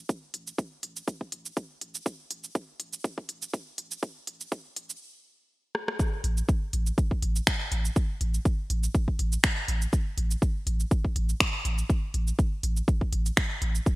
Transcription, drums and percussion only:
0.09 kick, shaker
0.34 closed hi-hat
0.47 shaker
0.58 kick, shaker
0.83 closed hi-hat
0.96 shaker
1.08 kick, shaker
1.21 kick
1.32 closed hi-hat
1.46 shaker
1.57 kick, shaker
1.81 closed hi-hat
1.95 shaker
2.06 kick, shaker
2.31 closed hi-hat
2.44 shaker
2.55 kick, shaker
2.80 closed hi-hat
2.93 shaker
3.04 kick, shaker
3.18 kick
3.29 closed hi-hat
3.42 shaker
3.53 kick, shaker
3.78 closed hi-hat
3.91 shaker
4.03 kick, shaker
4.27 closed hi-hat
4.41 shaker
4.52 kick, shaker
4.76 closed hi-hat
4.90 shaker
5.75 cross-stick
5.88 cross-stick
5.99 kick, shaker
6.24 closed hi-hat
6.37 shaker
6.49 kick, shaker
6.73 closed hi-hat
6.87 shaker
6.98 kick, shaker
7.11 kick
7.22 closed hi-hat
7.36 shaker
7.47 finger snap, kick, shaker
7.72 closed hi-hat
7.85 shaker
7.96 kick, shaker
8.21 closed hi-hat
8.34 shaker
8.45 kick, shaker
8.70 closed hi-hat
8.83 shaker
8.95 kick, shaker
9.08 kick
9.19 closed hi-hat
9.32 shaker
9.44 finger snap, kick, shaker
9.68 closed hi-hat
9.82 shaker
9.93 kick, shaker
10.18 closed hi-hat
10.31 shaker
10.42 kick, shaker
10.67 closed hi-hat
10.80 shaker
10.91 kick, shaker
11.05 kick
11.16 closed hi-hat
11.29 shaker
11.40 finger snap, kick, shaker
11.65 closed hi-hat
11.78 shaker
11.90 kick, shaker
12.14 closed hi-hat
12.28 shaker
12.39 kick, shaker
12.63 closed hi-hat
12.77 shaker
12.88 kick, shaker
13.01 kick
13.13 closed hi-hat
13.26 closed hi-hat, shaker
13.37 finger snap, kick, shaker
13.62 closed hi-hat
13.75 shaker
13.86 kick, shaker

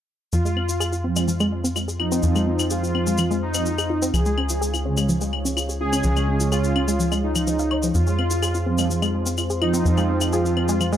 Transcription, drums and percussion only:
0.33 cabasa
0.46 cabasa
0.57 claves
0.69 cabasa
0.81 cabasa, claves
0.93 cabasa
1.16 cabasa, claves
1.28 cabasa
1.40 cabasa, claves
1.65 cabasa
1.76 cabasa, claves
1.89 cabasa
2.00 claves
2.12 cabasa
2.23 cabasa
2.35 cabasa, claves
2.59 cabasa, claves
2.70 cabasa
2.84 cabasa
2.95 claves
3.07 cabasa
3.18 cabasa, claves
3.31 cabasa
3.54 cabasa, claves
3.66 cabasa
3.78 cabasa, claves
4.02 cabasa
4.14 cabasa, claves
4.26 cabasa
4.38 claves
4.49 cabasa
4.62 cabasa
4.74 cabasa, claves
4.97 cabasa, claves
5.09 cabasa
5.21 cabasa
5.33 claves
5.46 cabasa
5.57 cabasa, claves
5.69 cabasa
5.93 cabasa, claves
6.03 cabasa
6.16 cabasa, claves
6.40 cabasa
6.52 cabasa, claves
6.64 cabasa
6.76 claves
6.88 cabasa
7.00 cabasa
7.12 cabasa, claves
7.35 cabasa, claves
7.47 cabasa
7.59 cabasa
7.71 claves
7.83 cabasa
7.95 cabasa
8.07 cabasa
8.19 claves
8.30 cabasa
8.43 cabasa, claves
8.54 cabasa
8.78 cabasa, claves
8.91 cabasa
9.02 cabasa, claves
9.26 cabasa
9.37 cabasa, claves
9.50 cabasa
9.62 claves
9.74 cabasa
9.86 cabasa
9.97 cabasa, claves
10.21 cabasa, claves
10.33 cabasa
10.46 cabasa
10.57 claves
10.68 cabasa
10.81 cabasa, claves
10.93 cabasa

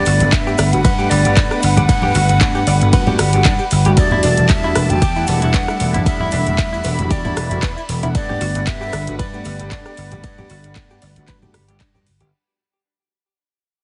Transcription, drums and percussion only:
0.05 open hi-hat, cabasa
0.20 closed hi-hat, cabasa
0.33 kick, clap, closed hi-hat, ride, cabasa
0.47 cabasa
0.58 cross-stick, open hi-hat, cabasa
0.73 closed hi-hat, cabasa
0.84 kick, closed hi-hat, ride, cabasa
0.98 cabasa
1.11 open hi-hat, cabasa
1.25 closed hi-hat, cabasa
1.36 kick, clap, closed hi-hat, ride, cabasa
1.51 cross-stick, cabasa
1.62 open hi-hat, cabasa
1.77 closed hi-hat, low conga, cabasa
1.88 kick, closed hi-hat, ride, cabasa
2.02 low conga
2.15 open hi-hat, cabasa
2.29 closed hi-hat, cabasa
2.41 kick, clap, closed hi-hat, ride, cabasa
2.55 cabasa
2.67 open hi-hat, cabasa
2.81 closed hi-hat, cabasa
2.93 kick, closed hi-hat, ride, cabasa
3.06 low conga, cabasa
3.19 cross-stick, open hi-hat, cabasa
3.33 closed hi-hat, cabasa
3.45 kick, clap, closed hi-hat, ride, cabasa
3.59 cabasa
3.71 open hi-hat, cabasa
3.85 closed hi-hat, cabasa
3.97 kick, closed hi-hat, ride, cabasa
4.11 low conga
4.23 open hi-hat, cabasa
4.37 closed hi-hat, cabasa
4.49 kick, clap, closed hi-hat, ride, cabasa
4.63 cabasa
4.75 cross-stick, open hi-hat, cabasa
4.90 closed hi-hat, cabasa
5.02 kick, closed hi-hat, ride, cabasa
5.16 cabasa
5.27 open hi-hat, cabasa
5.42 closed hi-hat, cabasa
5.54 kick, clap, closed hi-hat, ride, cabasa
5.68 cross-stick, cabasa
5.80 open hi-hat, cabasa
5.94 closed hi-hat, low conga, cabasa
6.05 kick, closed hi-hat, ride, cabasa
6.20 low conga
6.31 open hi-hat, cabasa
6.47 closed hi-hat, cabasa
6.58 kick, clap, closed hi-hat, ride, cabasa
6.73 cabasa
6.84 open hi-hat, cabasa
6.99 closed hi-hat, cabasa
7.11 kick, closed hi-hat, ride, cabasa
7.25 low conga, cabasa
7.37 cross-stick, open hi-hat, cabasa
7.51 closed hi-hat, cabasa
7.63 kick, clap, closed hi-hat, ride, cabasa
7.77 cabasa
7.89 open hi-hat, cabasa
8.03 closed hi-hat, cabasa
8.15 kick, closed hi-hat, ride, cabasa
8.30 low conga
8.41 open hi-hat, cabasa
8.55 closed hi-hat, cabasa
8.67 kick, clap, closed hi-hat, ride, cabasa
8.82 cabasa
8.93 cross-stick, open hi-hat, cabasa
9.07 closed hi-hat, cabasa
9.19 kick, closed hi-hat, ride, cabasa
9.33 cabasa
9.45 open hi-hat, cabasa
9.60 closed hi-hat, cabasa
9.72 kick, clap, closed hi-hat, ride, cabasa
9.85 cross-stick, cabasa
9.97 open hi-hat, cabasa
10.11 closed hi-hat, low conga, cabasa
10.24 kick, closed hi-hat, ride, cabasa
10.38 high conga, low conga, cabasa
10.49 open hi-hat, cabasa
10.64 closed hi-hat, cabasa
10.76 kick, clap, closed hi-hat, ride, cabasa
10.90 cabasa
11.02 open hi-hat, cabasa
11.16 closed hi-hat, cabasa
11.28 kick, clap, closed hi-hat, ride, cabasa
11.42 high conga, low conga, cabasa
11.54 cross-stick, open hi-hat, cabasa
11.69 closed hi-hat, cabasa
11.80 kick, clap, closed hi-hat, ride, cabasa
11.95 low conga, cabasa
12.07 open hi-hat, cabasa
12.20 closed hi-hat, cabasa

